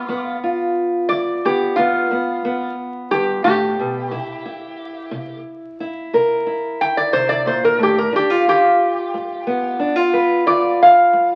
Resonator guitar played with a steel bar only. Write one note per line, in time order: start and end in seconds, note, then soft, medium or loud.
0.00 0.36 F4 medium
1.09 1.41 D5 medium
1.46 1.76 G4 medium
1.76 2.73 F4 medium
3.11 3.43 G4 medium
3.44 5.41 G4 medium
6.81 6.96 G5 loud
6.97 7.13 D5 medium
7.13 7.29 C5 medium
7.29 7.45 D5 medium
7.47 7.63 C5 medium
7.64 7.80 A#4 medium
7.83 7.98 G4 medium
7.98 8.14 A#4 medium
8.16 8.47 G4 medium
8.49 9.78 G4 medium
10.47 10.80 D5 medium
10.83 11.35 F5 medium